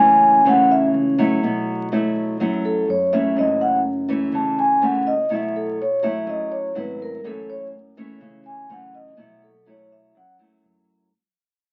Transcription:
Already playing: F#1 F#2 E3 A3 C#4 G#5
0.45 C#2 C#3 E3 A3 C#4 F#5
0.71 E5
0.94 C#2
1.18 F#3 A3 E4
1.42 B1 B2
1.92 F#3 A3 E4
2.39 F#2 F#3 A3 E4
2.65 A4
2.88 F#2 C#5
3.13 E3 A3 C#4 E5
3.36 F#1 F#2 D#5
3.61 F#5
4.08 E3 A3 C#4
4.33 C#2 C#3 A5
4.59 G#5
4.82 C#2 E3 A3 C#4 F#5
5.07 D#5
5.30 B1 B2 F#3 A3 E4
5.34 E5
5.56 A4
5.82 C#5
6.03 F#3 A3 E4 E5
6.27 F#2 D#5
6.52 C#5
6.75 G#1 F#3 A3 E4 B4
7.02 A#4
7.23 F#1 F#2 E3 A3 C#4 A4
7.50 C#5
7.97 E3 A3 C#4
8.20 C#2 C#3
8.46 G#5
8.69 F#2 E3 A3 C#4 F#5
8.95 D#5
9.17 B1 B2 F#3 A3 E4 E5
9.44 A4
9.66 F#3 A3 E4 C#5
9.92 E5
10.15 F#2 F#5
10.39 F#3 A3 E4
10.63 F#2

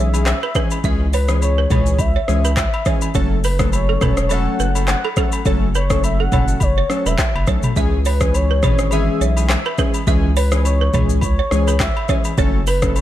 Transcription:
Already playing: B1 E5
0.14 E3 G#3 C#4 G#4, high agogo, shaker
0.26 E5, cross-stick, clap, low woodblock, shaker
0.43 B4, high agogo
0.55 E3 G#3 C#4 G#4 B4, kick, cross-stick, shaker
0.71 high agogo, shaker
0.84 C#2 E3 G#3 C#4 G#4 E5, kick, shaker
1.13 B4 C#5, open hi-hat, high agogo, shaker
1.28 E3 G#3 C#4 G#4, cross-stick, shaker
1.42 C#5, high agogo, shaker
1.58 B4
1.70 C#2 E3 G#3 C#4 G#4 C#5, kick, mid tom, high agogo, shaker
1.86 shaker
1.99 E5, kick, high agogo, shaker
2.16 C#5
2.28 C#2 E3 G#3 C#4 G#4, cross-stick, shaker
2.44 B4, high agogo, shaker
2.57 E5, kick, cross-stick, clap, low woodblock, shaker
2.74 high agogo
2.85 E3 G#3 C#4 G#4 C#5, kick, cross-stick, shaker
3.01 high agogo, shaker
3.14 F#1 F#3 A3 C#4 A4 C#5, kick, shaker
3.44 B4, open hi-hat, high agogo, shaker
3.59 F#3 A3 C#4 A4, kick, cross-stick, shaker
3.73 C#5, high agogo, shaker
3.89 A4
4.01 E1 F#3 A3 C#4 A4 B4, kick, cross-stick, mid tom, high agogo, shaker
4.17 cross-stick, shaker
4.29 F#3 A3 C#4 A4 C#5 F#5, high agogo, shaker
4.59 F#1 B4, shaker
4.75 F#3 A3 C#4 A4, high agogo, shaker
4.88 F#5, cross-stick, clap, low woodblock, shaker
5.04 A4, high agogo
5.16 F#3 A3 C#4 A4, kick, cross-stick, shaker
5.32 high agogo, shaker
5.45 F#1 F#3 A3 C#4 A4 C#5, kick, shaker
5.75 B4 C#5, high agogo, shaker
5.90 F#3 A3 C#4 A4, kick, cross-stick, shaker
6.04 E5, high agogo, shaker
6.20 A4 F#5
6.32 F#1 F#3 A3 C#4 A4 C#5, kick, mid tom, high agogo, shaker
6.48 shaker
6.60 F#1 C#5, kick, high agogo, shaker
6.78 C#5
6.90 F#3 A3 C#4 A4, cross-stick, shaker
7.06 E1 B4 E5, high agogo, shaker
7.19 kick, cross-stick, clap, low woodblock, shaker
7.35 F#1, high agogo
7.47 B1 F#3 A3 C#4 A4 C#5, kick, cross-stick, shaker
7.63 mid tom, high agogo, shaker
7.76 C#2 E3 G#3 C#4 G#4 E5, kick, shaker
8.05 B4 C#5, open hi-hat, high agogo, shaker
8.21 E3 G#3 C#4 G#4, kick, cross-stick, shaker
8.34 C#5, high agogo, shaker
8.51 B4
8.63 G#1 E3 G#3 C#4 G#4 C#5, kick, cross-stick, mid tom, high agogo, shaker
8.79 cross-stick, shaker
8.91 E3 G#3 C#4 G#4 E5, high agogo, shaker
9.21 B1 C#5, shaker
9.36 E3 G#3 C#4 G#4, high agogo, shaker
9.49 E5, cross-stick, clap, low woodblock, shaker
9.66 B4, high agogo
9.78 E3 G#3 C#4 G#4 B4, kick, cross-stick, shaker
9.94 high agogo, shaker
10.07 C#2 E3 G#3 C#4 G#4 E5, kick, shaker
10.37 B4 C#5, open hi-hat, high agogo, shaker
10.52 E3 G#3 C#4 G#4, cross-stick, shaker
10.65 C#5, high agogo, shaker
10.81 B4
10.94 C#2 E3 G#3 C#4 G#4 C#5, kick, mid tom, high agogo, shaker
11.09 shaker
11.21 C#5, kick, high agogo, shaker
11.39 C#5
11.51 C#2 E3 G#3 C#4 G#4, cross-stick, shaker
11.67 B4, high agogo, shaker
11.80 E5, kick, cross-stick, clap, low woodblock, shaker
11.97 high agogo
12.09 E3 G#3 C#4 G#4 C#5, kick, cross-stick, shaker
12.24 high agogo, shaker
12.37 F#1 F#3 A3 C#4 A4 C#5, kick, shaker
12.67 B4, open hi-hat, high agogo, shaker
12.82 F#3 A3 C#4 A4, kick, cross-stick, shaker
12.96 C#5, high agogo, shaker

